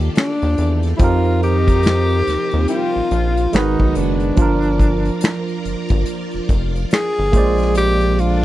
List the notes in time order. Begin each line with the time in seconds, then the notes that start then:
Already playing: D#3 A#3 D4 F4 G4 A4 D5
0.00 closed hi-hat
0.15 D4, finger snap, snare, closed hi-hat
0.42 D#2, closed hi-hat
0.58 E2, closed hi-hat
0.83 snare, closed hi-hat
0.97 F2 F3 C4 D#4 E4 A#4, kick, closed hi-hat
1.01 D#4 F4 G4 A#4
1.25 closed hi-hat
1.42 D#3 D#4 G4, closed hi-hat
1.68 kick, closed hi-hat
1.83 snare, closed hi-hat
1.87 finger snap
2.10 closed hi-hat
2.27 D#2, snare, closed hi-hat
2.51 D#2, closed hi-hat
2.68 G3 F4 G4, closed hi-hat
2.96 A#1
3.11 A#1 F3 F4, closed hi-hat
3.37 closed hi-hat
3.53 G#1 D#3 G#3 B3 D#4 F#4 A#4 B4, finger snap, snare, closed hi-hat
3.80 B1, kick
3.95 F#1 D4, closed hi-hat
4.20 closed hi-hat
4.36 G1 F3 D4 F4 A#4 D5, kick, closed hi-hat
4.42 A#4
4.62 closed hi-hat
4.80 kick, closed hi-hat
5.05 closed hi-hat
5.21 snare, closed hi-hat
5.25 finger snap
5.48 closed hi-hat
5.65 G1, closed hi-hat
5.89 G1, kick, closed hi-hat
6.06 closed hi-hat
6.31 F1, closed hi-hat
6.49 F1, kick, closed hi-hat
6.76 closed hi-hat
6.91 G#4, finger snap, snare, closed hi-hat
7.19 G1
7.32 A#1 F3 G#3 A#3 F4, kick, closed hi-hat
7.36 C5 D5
7.58 snare, closed hi-hat
7.75 G4, closed hi-hat
8.00 closed hi-hat
8.18 D3 D4 F4, closed hi-hat